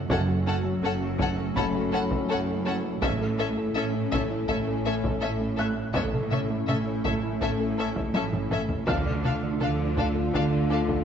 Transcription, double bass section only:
0.10 F#1
0.84 F#1
1.57 F#1
2.30 F#1
3.03 A1
3.76 A1
4.49 A1
5.22 A1
5.95 A1
6.69 A1
7.42 A1
8.15 A1
8.89 D2
9.62 D2
10.35 D2

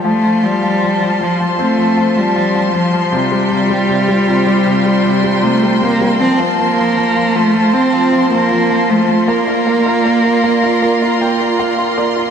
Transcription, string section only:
0.05 F4 C5 A5 C6
3.13 F4 G5
6.20 F4 A5
9.29 D5 A#5 C6

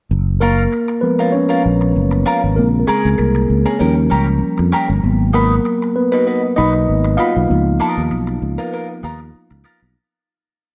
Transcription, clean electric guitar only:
0.41 C#4 F4 A#4
0.72 muted clean electric guitar stroke
0.88 muted clean electric guitar stroke
1.19 C#4 F4 A#4
1.34 muted clean electric guitar stroke
1.49 C#4 F4 A#4
1.64 muted clean electric guitar stroke
1.81 muted clean electric guitar stroke
2.11 muted clean electric guitar stroke
2.26 C#4 F4 A#4
2.43 muted clean electric guitar stroke
2.87 C#4 G#4 A#4
3.18 muted clean electric guitar stroke
3.35 muted clean electric guitar stroke
3.66 C#4 G#4 A#4
3.79 C#4 G4 A#4
3.95 muted clean electric guitar stroke
4.10 C#4 G4 A#4
4.27 muted clean electric guitar stroke
4.58 muted clean electric guitar stroke
4.72 C#4 G4 A#4
4.89 muted clean electric guitar stroke
5.34 D#4 F#4 B4
5.65 muted clean electric guitar stroke
5.82 muted clean electric guitar stroke
6.12 D#4 F#4 B4
6.26 D#4 F#4 B4
6.43 muted clean electric guitar stroke
6.56 D#4 F#4 B4
6.73 muted clean electric guitar stroke
7.04 muted clean electric guitar stroke
7.18 D#4 F#4 B4
7.35 muted clean electric guitar stroke
7.80 B3 F4 A#4
8.11 muted clean electric guitar stroke
8.27 muted clean electric guitar stroke
8.58 B3 F4 A#4
8.72 B3 F4 A#4
8.89 muted clean electric guitar stroke
9.03 B3 F4 A#4
9.20 muted clean electric guitar stroke
9.51 muted clean electric guitar stroke
9.64 B3 F4 A#4

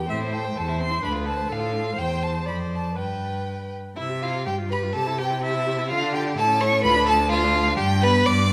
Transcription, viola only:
0.08 C5
0.56 C5
1.02 B4
1.49 A4
1.97 C5
2.46 D5
2.96 B4
3.97 E4
4.09 G4
4.23 E4
4.35 G4
4.47 G4
4.59 F4
4.71 G4
4.83 F4
4.95 G4
5.07 E4
5.19 G4
5.31 E4
5.43 G4
5.54 E4
5.66 G4
5.78 E4
5.90 F4
6.02 D4
6.14 F4
6.26 D4
6.36 E4
6.48 C#4
6.60 E4
6.72 C#4
6.84 F4
6.96 D4
7.08 F4
7.21 D4
7.32 F4
7.44 D4
7.56 F4
7.68 D4
8.03 B3
8.50 B3

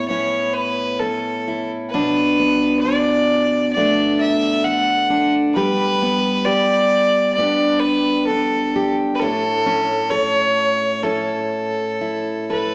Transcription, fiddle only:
0.08 C#5
0.53 B4
0.99 A4
1.90 B4
2.80 D5
3.72 D5
4.20 E5
4.64 F#5
5.55 B4
6.45 D5
7.34 D5
7.79 B4
8.27 A4
9.15 B4
9.20 A4
10.10 C#5
11.03 A4
12.51 B4

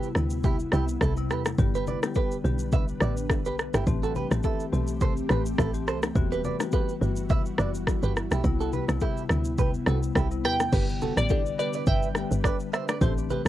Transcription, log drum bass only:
0.16 D2
0.73 C2
1.01 C2
1.30 E2
1.58 G1
2.44 B1
3.01 A1
3.46 B1
3.74 G1
3.87 A1
4.31 A1
4.73 B1
5.30 A1
5.59 A1
5.87 C2
6.16 E1
7.02 G1
7.59 F#1
8.03 G1
8.31 B1
8.44 C2
8.88 C2
9.30 D2
9.87 C2
10.16 C2
10.44 E2
10.73 G1
11.17 A1
11.87 G1
12.31 G1
13.01 A1

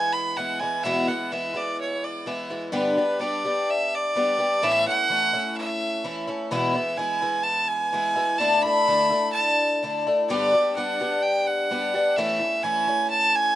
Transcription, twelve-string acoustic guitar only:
Already playing: E3 G#3 B3 E4
0.37 E3 G#3 B3 E4
0.61 E3 G#3 B3 E4
0.85 E2 B2 E3 G#3 B3 E4
1.08 E3 G#3 B3 E4
1.32 E3 G#3 B3 E4
1.54 E3 G#3 B3 E4
2.26 E3 G#3 B3 E4
2.50 E3 G#3 B3 E4
2.72 G2 D3 G3 B3 D4 G4
2.97 G3 B3 D4 G4
3.19 G3 B3 D4 G4
3.45 G3 B3 D4 G4
4.15 G3 B3 D4 G4
4.38 G3 B3 D4 G4
4.62 A2 E3 A3 C#4 E4
4.86 A3 C#4 E4
5.09 E3 A3 C#4 E4
5.33 A3 C#4 E4
6.04 E3 A3 C#4 E4
6.28 A3 C#4 E4
6.51 E2 B2 E3 G#3 B3 E4
6.74 G#3 B3 E4
6.98 E3 G#3 B3 E4
7.22 E3 G#3 B3 E4
7.93 E3 G#3 B3 E4
8.16 E3 G#3 B3 E4
8.40 D3 A3 D4 E4
8.64 A3 D4 E4
8.87 D3 A3 D4 E4
9.10 A3 D4 E4
9.83 D3 A3 D4 E4
10.07 A3 D4 E4
10.30 G2 D3 G3 B3 D4 G4
10.53 G3 B3 D4 G4
10.77 G3 B3 D4 G4
11.00 G3 B3 D4 G4
11.70 G3 B3 D4 G4
11.94 G3 B3 D4 G4
12.17 A2 E3 A3 C#4 E4
12.39 A3 C#4 E4
12.64 E3 A3 C#4 E4
12.88 A3 C#4 E4

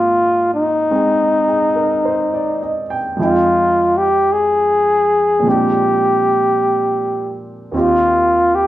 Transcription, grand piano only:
Already playing: G#2 D#3 A#3 C4 G4
0.91 G#3 C4 D#4 G#4
1.48 G#4
1.75 A#4
2.05 C5
2.34 D5
2.62 D#5
2.90 G5
3.17 F2 F3 G#3
3.22 D#4 G5
5.40 A#2 F3
5.45 G#3 C4
5.49 D4 G4
7.72 D#2 D#3 C4 F4
7.77 G4

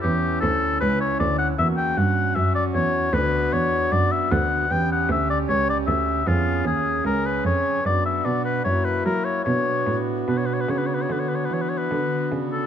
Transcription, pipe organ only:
0.00 E2 B3 C#4 E4
0.43 D2
0.82 C#2
1.21 D2
1.56 A#3 C#4 F#4
1.60 E2
1.98 G2
2.37 F#2
2.75 E2
3.09 B3 D4 F#4
3.13 D2
3.52 E2
3.92 F#2
4.32 D2
4.67 B3 C#4 G4
4.71 E2
5.10 D2
5.50 C#2
5.88 D2
6.23 B3 C#4 G#4
6.28 F2
6.65 D#2
7.06 C#2
7.46 F2
7.81 B3 D4 F#4
7.86 F#2
8.25 B2
8.62 A#3 E4 F#4
8.66 F#2
9.06 F#3
9.42 B3 D4 F#4
9.47 B2
9.88 A2
10.28 B2
10.69 C#3
11.10 D3
11.50 E3
11.92 D3
12.33 C#3

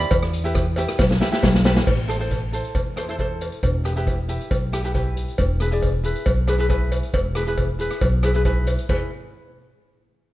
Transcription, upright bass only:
0.11 E2
0.99 B1
1.43 B1
1.87 A1
2.75 E2
3.63 E1
4.51 B1
5.39 E1
6.26 B1
7.14 E1
8.02 B1
8.89 E2

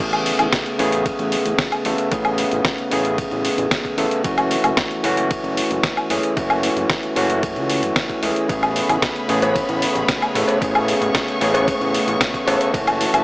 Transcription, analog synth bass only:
0.00 A1
0.39 A1
0.79 A1
1.19 A1
1.46 A1
1.85 A1
2.12 A1
2.52 A1
2.92 A1
3.32 A1
3.58 A1
3.98 A1
4.25 F#1
4.64 F#1
5.04 F#1
5.44 F#1
5.71 F#1
6.10 F#1
6.37 F#1
6.76 F#1
7.16 F#1
7.56 C#2
7.83 F#1
8.23 C#2
8.49 A1
8.89 A1
9.29 A1
9.69 A1
9.95 A1
10.35 A1
10.62 A1
11.01 A1
11.41 A1
11.81 A1
12.07 A1
12.47 A1
12.74 F#1
13.14 F#1

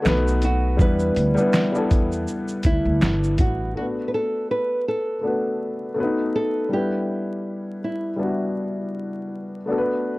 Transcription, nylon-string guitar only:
Already playing: F#4
0.44 F#4
0.81 B4
2.66 E4
3.40 F#4
3.77 F#4
4.08 B4
4.14 A4
4.51 B4
4.88 A4
6.36 A4
6.73 G4
7.84 E4

